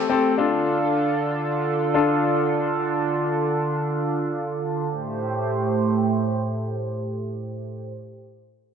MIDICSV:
0, 0, Header, 1, 4, 480
1, 0, Start_track
1, 0, Key_signature, 0, "minor"
1, 0, Tempo, 500000
1, 8392, End_track
2, 0, Start_track
2, 0, Title_t, "Grand piano"
2, 0, Program_c, 0, 0
2, 91, Note_on_c, 0, 60, 89
2, 94, Note_on_c, 0, 67, 84
2, 96, Note_on_c, 0, 69, 102
2, 316, Note_off_c, 0, 60, 0
2, 318, Note_off_c, 0, 67, 0
2, 319, Note_off_c, 0, 69, 0
2, 363, Note_on_c, 0, 62, 90
2, 366, Note_on_c, 0, 65, 84
2, 369, Note_on_c, 0, 69, 95
2, 1255, Note_off_c, 0, 62, 0
2, 1256, Note_off_c, 0, 65, 0
2, 1258, Note_off_c, 0, 69, 0
2, 1865, Note_on_c, 0, 62, 91
2, 1866, Note_on_c, 0, 65, 88
2, 1868, Note_on_c, 0, 69, 100
2, 2524, Note_off_c, 0, 62, 0
2, 2524, Note_off_c, 0, 65, 0
2, 2525, Note_off_c, 0, 69, 0
2, 8392, End_track
3, 0, Start_track
3, 0, Title_t, "Analog synth pad"
3, 0, Program_c, 1, 89
3, 0, Note_on_c, 1, 57, 80
3, 0, Note_on_c, 1, 60, 75
3, 0, Note_on_c, 1, 67, 87
3, 325, Note_off_c, 1, 57, 0
3, 325, Note_off_c, 1, 60, 0
3, 325, Note_off_c, 1, 67, 0
3, 364, Note_on_c, 1, 65, 73
3, 364, Note_on_c, 1, 69, 83
3, 365, Note_on_c, 1, 50, 78
3, 365, Note_on_c, 1, 62, 73
3, 4673, Note_off_c, 1, 50, 0
3, 4673, Note_off_c, 1, 62, 0
3, 4673, Note_off_c, 1, 65, 0
3, 4673, Note_off_c, 1, 69, 0
3, 4711, Note_on_c, 1, 57, 72
3, 4712, Note_on_c, 1, 72, 88
3, 4713, Note_on_c, 1, 45, 74
3, 4713, Note_on_c, 1, 67, 67
3, 7614, Note_off_c, 1, 57, 0
3, 7615, Note_off_c, 1, 45, 0
3, 7615, Note_off_c, 1, 67, 0
3, 7615, Note_off_c, 1, 72, 0
3, 8392, End_track
4, 0, Start_track
4, 0, Title_t, "Downlifter"
4, 0, Program_c, 2, 103
4, 0, Note_on_c, 2, 60, 84
4, 363, Note_off_c, 2, 60, 0
4, 8392, End_track
0, 0, End_of_file